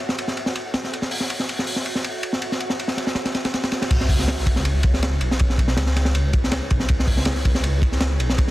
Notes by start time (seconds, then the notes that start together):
Already playing: F#4 A4 C#5 E5 F#5
0.09 snare
0.18 ride
0.28 snare
0.37 ride
0.46 snare
0.55 ride
0.74 snare, ride
0.84 snare
0.93 F#4 A4 C#5 E5 F#5, ride
1.02 snare
1.11 open hi-hat
1.20 snare
1.30 ride
1.40 snare
1.49 ride
1.59 snare
1.67 open hi-hat
1.76 snare
1.86 ride
1.95 snare
2.04 ride
2.23 ride
2.33 snare
2.42 ride
2.52 snare
2.60 ride
2.70 snare
2.79 ride
2.88 snare
2.97 snare, ride
3.07 snare
3.15 snare, ride
3.25 snare, ride
3.35 snare, ride
3.45 snare, ride
3.54 snare, ride
3.63 snare, ride
3.72 snare, ride
3.82 snare, ride
3.90 C#2, kick, crash, ride, sub drop
4.01 snare
4.09 kick, open hi-hat
4.19 snare
4.28 snare, ride
4.38 snare
4.46 kick, ride
4.56 snare
4.65 ride
4.83 kick, ride
4.94 C#2, snare
5.03 snare, ride
5.21 B1, ride
5.31 snare
5.39 kick, ride
5.50 snare
5.58 kick, ride
5.68 snare
5.77 C#2, snare, ride
5.86 snare
5.96 snare, ride
6.05 snare
6.14 C#2, ride
6.33 kick, ride
6.44 snare
6.52 snare, ride
6.70 B1, kick, ride
6.80 snare
6.89 C#2, kick, ride
6.99 snare
7.07 kick, open hi-hat
7.17 snare
7.25 snare, ride
7.35 snare
7.45 kick, ride
7.55 snare
7.64 ride
7.82 kick, ride
7.92 C#2, snare
8.01 snare, ride
8.20 B1, ride
8.29 snare
8.38 kick, ride
8.48 snare